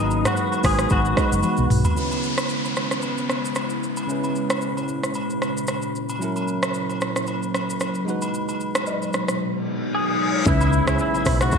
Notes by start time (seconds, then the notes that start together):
Already playing: G#1 D#3 G#3 B3 D#4 F#4 B4
0.11 shaker
0.24 G#3 D#4 F#4 B4, cross-stick, mid tom, high agogo, shaker
0.37 shaker
0.52 high agogo, shaker
0.63 G#1 G#4, kick, cross-stick, open hi-hat, shaker
0.79 cross-stick, shaker
0.89 G#1 F#4, kick, high agogo, shaker
1.05 shaker
1.16 G#3 D#4 F#4 B4, kick, cross-stick, high agogo, shaker
1.32 F#1, shaker
1.43 high tom, high agogo, shaker
1.57 B1, shaker
1.70 B1, mid tom, open hi-hat, shaker
1.84 floor tom, high agogo, shaker
1.94 C#3 G#3 B3 C#4 E4, downlifter, shaker
1.99 B4
2.11 high agogo, shaker
2.23 shaker
2.38 cross-stick, high agogo, shaker
2.49 shaker
2.65 high agogo, shaker
2.76 cross-stick, shaker
2.91 cross-stick, shaker
3.02 high agogo, shaker
3.18 shaker
3.29 cross-stick, high agogo, shaker
3.45 shaker
3.55 cross-stick, high agogo, shaker
3.70 shaker
3.83 shaker
3.97 high agogo, shaker
4.07 A#2 C#3 C#4 E4, shaker
4.12 B4
4.24 high agogo, shaker
4.35 shaker
4.50 cross-stick, high agogo, shaker
4.61 shaker
4.77 high agogo, shaker
4.88 shaker
5.03 cross-stick, shaker
5.14 high agogo, shaker
5.30 shaker
5.42 cross-stick, high agogo, shaker
5.57 shaker
5.67 cross-stick, high agogo, shaker
5.82 shaker
5.96 shaker
6.09 high agogo, shaker
6.19 C#3 F#3 C#4 E4, shaker
6.24 A#4
6.36 high agogo, shaker
6.48 shaker
6.63 cross-stick, high agogo, shaker
6.74 shaker
6.89 high agogo, shaker
7.01 cross-stick, shaker
7.16 cross-stick, shaker
7.27 high agogo, shaker
7.43 shaker
7.54 cross-stick, high agogo, shaker
7.70 shaker
7.80 cross-stick, high agogo, shaker
7.95 shaker
8.05 B2 G#3 D#4 F#4, shaker
8.10 B4
8.22 high agogo, shaker
8.34 shaker
8.49 high agogo, shaker
8.60 shaker
8.75 cross-stick, high agogo, shaker
8.86 low woodblock, shaker
9.02 high agogo, shaker
9.13 cross-stick, shaker
9.28 cross-stick, shaker
9.40 reverse cymbal
9.95 G#4
10.45 C#2 C#3 G#3 B3 C#4 E4 B4, kick, impact, shaker
10.61 high agogo, shaker
10.73 shaker
10.86 C#2 C#3 C#4 E4 G#4, cross-stick, high agogo, shaker
10.99 E4, shaker
11.14 high agogo, shaker
11.25 B1, kick, cross-stick, open hi-hat, shaker
11.41 F#4, cross-stick, shaker
11.52 kick, high agogo, shaker